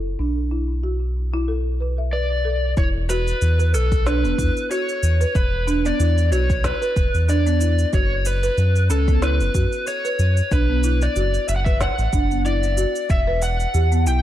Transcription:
Already playing: analog synth bass F#1, marimba A4
0.19 analog synth bass B1, marimba D4
0.51 marimba E4
0.83 marimba F#4
1.34 marimba E4
1.48 marimba A4
1.81 marimba B4
1.98 marimba E5
2.13 marimba B4, electric slide guitar D5
2.45 marimba A4
2.77 analog synth bass E1, marimba E4, electric slide guitar C#5, kick, cabasa
3.09 marimba F#4, electric slide guitar B4, cabasa
3.27 cabasa
3.42 analog synth bass E2, cabasa
3.59 marimba B4, cabasa
3.74 analog synth bass B1, electric slide guitar A4, cabasa
3.92 kick, cabasa
4.06 marimba D4, electric slide guitar B4, snare, cabasa
4.24 analog synth bass E1, marimba B3, cabasa
4.38 analog synth bass E2, marimba E4, kick, cabasa
4.57 cabasa
4.71 marimba F#4, electric slide guitar C#5, cabasa
4.89 cabasa
5.03 analog synth bass E2, cabasa
5.21 marimba B4, cabasa
5.35 analog synth bass E1, electric slide guitar B4, kick, cabasa
5.67 marimba D4, cabasa
5.85 marimba B3, electric slide guitar D5, cabasa
5.99 analog synth bass E2, marimba E4, cabasa
6.18 cabasa
6.32 analog synth bass B1, marimba F#4, electric slide guitar C#5, cabasa
6.50 kick, cabasa
6.64 electric slide guitar B4, kick, snare, cabasa
6.82 marimba B4, cabasa
6.96 analog synth bass E1, kick, cabasa
7.14 analog synth bass E2, cabasa
7.28 marimba D4, electric slide guitar D5, cabasa
7.46 marimba B3, cabasa
7.61 marimba E4, cabasa
7.79 cabasa
7.93 analog synth bass F#1, marimba F#4, electric slide guitar C#5, kick, cabasa
8.25 electric slide guitar B4, cabasa
8.43 marimba B4, cabasa
8.58 analog synth bass F#2, cabasa
8.76 cabasa
8.90 analog synth bass C#2, marimba C#4, electric slide guitar A4, cabasa
9.08 marimba B3, kick, cabasa
9.22 marimba E4, electric slide guitar B4, snare, cabasa
9.40 analog synth bass F#1, cabasa
9.55 analog synth bass F#2, marimba F#4, kick, cabasa
9.72 cabasa
9.87 electric slide guitar C#5, cabasa
10.05 marimba B4, cabasa
10.19 analog synth bass F#2, cabasa
10.37 cabasa
10.52 analog synth bass B1, marimba D4, electric slide guitar B4, kick, cabasa
10.70 marimba B3
10.84 marimba E4, cabasa
11.02 electric slide guitar D5, cabasa
11.16 analog synth bass F#1, marimba F#4, cabasa
11.34 cabasa
11.48 analog synth bass F#1, electric slide guitar E5, cabasa
11.56 electric slide guitar F#5
11.64 marimba B4, electric slide guitar E5, kick, cabasa
11.81 electric slide guitar F#5, kick, snare, cabasa
11.98 analog synth bass A1, cabasa
12.13 analog synth bass F#1, marimba D4, kick, cabasa
12.31 marimba B3, cabasa
12.45 marimba E4, electric slide guitar D5, cabasa
12.63 cabasa
12.77 marimba F#4, cabasa
12.96 cabasa
13.10 analog synth bass E1, electric slide guitar E5, kick, cabasa
13.27 marimba B4
13.42 electric slide guitar F#5, cabasa
13.60 cabasa
13.74 analog synth bass E2, marimba G4, cabasa
13.92 marimba B3, cabasa
14.06 analog synth bass B1, marimba E4, electric slide guitar G5, cabasa

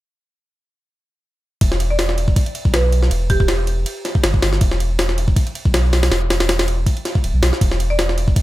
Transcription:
1.61 sub bass E1, kick, ride
1.72 snare
1.80 ride
1.90 marimba D5
1.99 snare, open hi-hat
2.09 snare
2.18 ride
2.28 kick
2.36 kick, ride
2.46 ride
2.55 ride
2.65 sub bass B1, kick
2.74 marimba B4, snare, ride
2.92 ride
3.03 snare
3.11 sub bass E1, ride
3.30 marimba G4, kick, ride
3.40 marimba G4, kick
3.48 snare, ride
3.67 ride
3.86 ride
4.05 snare, ride
4.15 kick
4.24 sub bass G1, snare, ride
4.34 kick
4.42 sub bass G1, snare, open hi-hat
4.53 snare
4.61 sub bass E1, kick, ride
4.71 snare
4.80 ride
4.99 snare, open hi-hat
5.09 snare
5.18 ride
5.28 kick
5.36 kick, ride
5.47 ride
5.55 ride
5.65 sub bass B1, kick
5.74 snare, ride
5.93 snare, open hi-hat
6.03 snare, open hi-hat
6.11 sub bass E1, snare, open hi-hat
6.30 snare, open hi-hat
6.40 snare, open hi-hat
6.49 snare, open hi-hat
6.59 snare, open hi-hat
6.68 ride
6.86 kick, ride
6.97 ride
7.05 snare, ride
7.15 kick
7.24 sub bass D1, ride
7.34 sub bass B1
7.42 sub bass B1, snare, open hi-hat
7.53 snare
7.61 sub bass E1, kick, ride
7.71 snare
7.80 ride
7.90 marimba D5
7.99 snare, open hi-hat
8.09 snare
8.18 ride
8.28 kick
8.36 kick, ride

